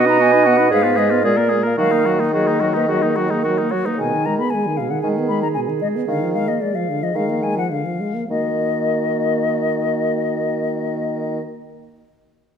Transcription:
0.00 0.72 B2 medium
0.00 0.74 D#5 medium
0.06 0.19 D#4 soft
0.06 0.18 B4 soft
0.06 0.23 A#5 medium
0.19 0.35 B3 soft
0.19 0.34 F#4 soft
0.19 0.48 G#5 medium
0.32 0.48 D#4 soft
0.32 0.46 B4 soft
0.44 0.61 B3 soft
0.44 0.59 F#4 soft
0.44 0.72 F#5 medium
0.58 0.71 D#4 soft
0.58 0.70 B4 soft
0.70 1.26 G#2 soft
0.70 0.86 G#3 soft
0.70 0.85 G#4 soft
0.70 1.24 B4 medium
0.70 1.00 F5 medium
0.83 0.99 B3 soft
0.83 0.98 F4 soft
0.96 1.13 G#3 soft
0.96 1.12 G#4 soft
0.96 1.26 D#5 medium
1.10 1.24 B3 soft
1.10 1.24 F4 soft
1.25 1.77 A#2 soft
1.25 1.39 G#3 soft
1.25 1.39 G#4 soft
1.25 1.58 A#4 soft
1.25 1.64 D5 medium
1.37 1.52 A#3 soft
1.37 1.51 A#4 soft
1.50 1.67 G#3 soft
1.50 1.65 G#4 soft
1.64 1.78 A#3 soft
1.64 1.77 A#4 soft
1.64 1.77 F5 soft
1.78 3.68 D#3 soft
1.78 1.93 F#3 soft
1.78 1.93 F#4 soft
1.78 2.24 A#4 soft
1.78 2.13 F5 medium
1.91 2.07 A#3 soft
1.91 2.07 D#4 soft
2.05 2.21 F#3 soft
2.05 2.21 F#4 soft
2.20 2.33 A#3 soft
2.20 2.33 D#4 soft
2.33 2.49 F#3 soft
2.33 2.49 F#4 soft
2.33 2.61 G#4 soft
2.33 3.40 D#5 soft
2.47 2.63 A#3 soft
2.47 2.62 D#4 soft
2.60 2.77 F#3 soft
2.60 2.75 F#4 soft
2.60 2.77 A#4 soft
2.74 2.89 A#3 soft
2.74 2.88 D#4 soft
2.74 2.90 B4 soft
2.88 3.05 F#3 soft
2.88 3.04 F#4 soft
2.88 3.17 G#4 soft
3.02 3.19 A#3 soft
3.02 3.18 D#4 soft
3.15 3.34 F#3 soft
3.15 3.29 F#4 soft
3.15 3.32 F#4 soft
3.30 3.45 A#3 soft
3.30 3.43 D#4 soft
3.30 3.45 G#4 soft
3.44 3.62 F#3 soft
3.44 3.59 F#4 soft
3.44 3.70 A#4 soft
3.58 3.75 A#3 soft
3.58 3.73 D#4 soft
3.71 3.90 F#3 soft
3.71 3.87 F#4 soft
3.71 3.87 C#5 soft
3.85 4.00 A#3 soft
3.85 3.99 D#4 soft
3.85 3.97 B4 soft
3.97 4.15 B2 soft
3.97 4.42 D#3 soft
3.97 7.96 G#4 soft
3.97 4.27 G#5 medium
4.13 4.29 D#3 soft
4.26 4.42 G#3 soft
4.26 4.38 A#5 medium
4.39 4.56 B3 soft
4.39 4.52 B5 medium
4.50 4.68 G#3 soft
4.50 4.79 G#5 medium
4.67 4.81 D#3 soft
4.77 4.93 B2 soft
4.77 4.92 F5 medium
4.90 5.04 D#3 soft
4.90 5.01 F#5 soft
5.02 5.47 D#3 soft
5.02 5.19 G#3 soft
5.02 5.08 G#5 medium
5.18 5.32 B3 soft
5.28 5.44 G#3 soft
5.28 5.42 B5 medium
5.42 5.59 D#3 soft
5.42 5.48 A#5 medium
5.54 5.70 B2 soft
5.54 5.60 G#5 medium
5.68 5.84 D#3 soft
5.82 5.97 G#3 soft
5.82 5.88 D#5 soft
5.96 6.08 B3 soft
6.08 6.23 D3 soft
6.08 6.52 D#3 soft
6.08 6.33 F5 medium
6.22 6.37 F3 soft
6.34 6.51 G#3 soft
6.34 6.50 F5 medium
6.48 6.63 A#3 soft
6.48 6.62 D#5 medium
6.61 6.78 G#3 soft
6.61 6.77 D5 medium
6.75 6.91 F3 soft
6.75 7.05 F5 medium
6.89 7.05 D3 soft
7.03 7.15 F3 soft
7.03 7.18 D#5 medium
7.14 7.61 D#3 soft
7.14 7.30 G#3 soft
7.14 7.45 F5 medium
7.29 7.44 A#3 soft
7.42 7.58 G#3 soft
7.42 7.57 G#5 soft
7.57 7.72 F3 soft
7.57 7.71 F#5 soft
7.71 7.86 D3 soft
7.71 8.29 F5 soft
7.85 8.02 F3 soft
8.00 8.15 G#3 soft
8.14 8.28 A#3 soft
8.28 11.41 D#3 soft
8.28 11.39 A#3 soft
8.28 11.40 F#4 soft
8.28 11.41 D#5 soft

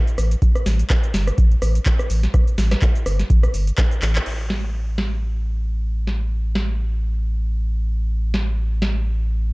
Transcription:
0.07 closed hi-hat soft
0.07 shaker soft
0.18 0.35 A1 loud
0.18 cross-stick medium
0.18 open hi-hat loud
0.18 shaker medium
0.31 closed hi-hat medium
0.31 shaker soft
0.42 kick loud
0.42 closed hi-hat medium
0.42 shaker soft
0.55 cross-stick medium
0.55 closed hi-hat soft
0.55 shaker soft
0.66 0.83 A1 loud
0.66 snare medium
0.66 open hi-hat loud
0.66 shaker medium
0.80 closed hi-hat medium
0.80 shaker soft
0.90 kick loud
0.90 cross-stick medium
0.90 clap loud
0.90 closed hi-hat medium
0.90 shaker soft
1.03 closed hi-hat soft
1.03 shaker soft
1.14 1.31 G1 loud
1.14 snare medium
1.14 open hi-hat loud
1.14 shaker medium
1.28 cross-stick medium
1.28 closed hi-hat medium
1.28 shaker soft
1.38 1.55 A1 medium
1.38 kick loud
1.38 closed hi-hat medium
1.38 shaker soft
1.51 closed hi-hat soft
1.62 1.79 A1 loud
1.62 cross-stick medium
1.62 open hi-hat loud
1.62 shaker medium
1.75 closed hi-hat medium
1.75 shaker soft
1.86 kick medium
1.86 clap loud
1.86 closed hi-hat medium
1.86 shaker soft
1.99 cross-stick medium
1.99 closed hi-hat soft
1.99 shaker soft
2.10 2.27 A1 loud
2.10 open hi-hat loud
2.10 shaker medium
2.23 snare soft
2.23 closed hi-hat medium
2.23 shaker soft
2.34 kick loud
2.34 cross-stick medium
2.34 closed hi-hat medium
2.34 shaker soft
2.47 closed hi-hat soft
2.47 shaker soft
2.58 2.75 A1 loud
2.58 snare medium
2.58 open hi-hat loud
2.58 shaker medium
2.71 cross-stick medium
2.71 snare medium
2.71 closed hi-hat medium
2.71 shaker soft
2.82 kick loud
2.82 clap loud
2.82 closed hi-hat medium
2.82 shaker soft
2.95 closed hi-hat soft
2.95 shaker soft
3.06 3.23 G1 loud
3.06 cross-stick medium
3.06 open hi-hat loud
3.06 shaker medium
3.19 snare soft
3.19 closed hi-hat medium
3.19 shaker soft
3.30 3.47 A1 medium
3.30 kick loud
3.30 closed hi-hat medium
3.30 shaker soft
3.43 cross-stick medium
3.43 closed hi-hat soft
3.43 shaker soft
3.54 3.71 G1 loud
3.54 open hi-hat loud
3.54 shaker medium
3.67 closed hi-hat medium
3.67 shaker soft
3.78 kick loud
3.78 cross-stick medium
3.78 clap loud
3.78 closed hi-hat medium
3.78 shaker soft
3.91 closed hi-hat soft
3.91 shaker soft
4.02 4.19 A1 loud
4.02 clap medium
4.02 open hi-hat loud
4.02 shaker medium
4.15 clap loud
4.15 closed hi-hat medium
4.15 shaker soft
4.26 9.53 A1 medium
4.26 crash medium
4.50 snare medium
4.98 snare medium
6.07 snare soft
6.55 snare medium
8.34 snare medium
8.82 snare medium

